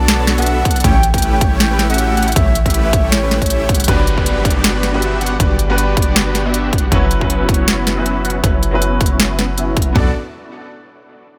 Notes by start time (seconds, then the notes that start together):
Already playing: B1 B3 D4 F#4 A4 D5
0.08 A5, snare, closed hi-hat
0.19 B3 D4 F#4 A4 C#5
0.27 snare, closed hi-hat
0.38 B3 D4 F#4 A4 E5 F#5, closed hi-hat
0.42 closed hi-hat
0.46 closed hi-hat
0.65 B3 D4 F#4 A4 F#5, kick, closed hi-hat
0.71 closed hi-hat
0.76 closed hi-hat
0.80 closed hi-hat
0.84 A1 A3 C#4 E4 G4 C#5 G5, kick, closed hi-hat
1.03 closed hi-hat
1.14 A3 C#4 E4 G4 B4 G5, kick, closed hi-hat
1.18 closed hi-hat
1.22 closed hi-hat
1.33 G5
1.41 A3 C#4 E4 G4 C#5, kick, closed hi-hat
1.60 G5, snare, closed hi-hat
1.71 A3 C#4 E4 G4 B4
1.79 snare, closed hi-hat
1.90 A3 C#4 E4 G4 E5 F#5, closed hi-hat
1.94 closed hi-hat
1.98 closed hi-hat
2.17 A3 C#4 E4 G4 F#5, closed hi-hat
2.22 closed hi-hat
2.28 closed hi-hat
2.32 C#5, closed hi-hat
2.36 A1 A3 C#4 E4 G4 E5, kick, closed hi-hat
2.55 closed hi-hat
2.66 A3 C#4 E4 G4 B4 E5, kick, closed hi-hat
2.70 closed hi-hat
2.74 closed hi-hat
2.85 E5
2.93 C#4 C#5, kick, closed hi-hat
3.12 C#5, snare, closed hi-hat
3.23 A3 C#4 E4 G4 B4
3.31 snare, closed hi-hat
3.42 A3 C#4 E4 G4 C#5 E5, kick, closed hi-hat
3.46 closed hi-hat
3.50 closed hi-hat
3.69 A3 C#4 E4 G4 F#5, kick, closed hi-hat
3.75 closed hi-hat
3.80 closed hi-hat
3.84 G3 D4, closed hi-hat
3.88 G1 B3 D4 F#4 G4 B4 D5, kick, closed hi-hat, downlifter
4.07 closed hi-hat
4.16 G3 B3 D4 F#4 G4 B4, kick
4.26 closed hi-hat
4.45 B3 D4 F#4 G4 D5, kick, closed hi-hat
4.50 closed hi-hat
4.64 snare, closed hi-hat
4.75 B3 D4 F#4 G4 B4
4.83 snare, closed hi-hat
4.92 G3 B3 D4 F#4 G4 B4 E5
5.02 closed hi-hat
5.21 B3 D4 F#4 G4 F#5, closed hi-hat
5.26 closed hi-hat
5.39 G1 G3 B3 D4 F#4 G4 B4 D5, kick, closed hi-hat
5.59 closed hi-hat
5.68 G3 B3 D4 F#4 G4 B4
5.72 B4
5.78 closed hi-hat
5.97 B3 D4 F#4 G4 D5, kick, closed hi-hat
6.02 closed hi-hat
6.16 snare, closed hi-hat
6.26 B3 D4 F#4 G4 B4
6.35 snare, closed hi-hat
6.45 B3 D4 F#4 G4 E5
6.54 closed hi-hat
6.73 B3 D4 F#4 F#5, kick, closed hi-hat
6.78 closed hi-hat
6.91 F#1 F#3 B3 C#4 E4 F#4 B4 C#5, kick, closed hi-hat
7.11 closed hi-hat
7.20 F#3 B3 C#4 E4 F#4 B4, kick
7.30 closed hi-hat
7.49 C#4 F#4 C#5, kick, closed hi-hat
7.54 closed hi-hat
7.68 snare, closed hi-hat
7.78 B3 C#4 E4 F#4 B4
7.87 snare, closed hi-hat
7.95 F#3 B3 C#4 E4 F#4 E5
7.99 B4
8.06 closed hi-hat
8.25 B3 C#4 E4 F#4 F#5, closed hi-hat
8.30 closed hi-hat
8.43 F#1 F#3 C#4 E4 F#4 B4 C#5, kick, closed hi-hat
8.63 closed hi-hat
8.71 F#3 B3 C#4 E4 F#4 B4
8.82 closed hi-hat
9.00 C#4 F#4 C#5, kick, closed hi-hat
9.06 closed hi-hat
9.20 snare, closed hi-hat
9.30 B3 C#4 E4 F#4 B4
9.39 snare, closed hi-hat
9.57 B3 C#4 E4 F#4 E5, closed hi-hat
9.77 kick, closed hi-hat
9.82 closed hi-hat
9.87 B3 C#4 E4 F#4 F#5
9.93 B1 B3 D4 F#4 A4 D5, kick, floor tom
9.97 A4 D5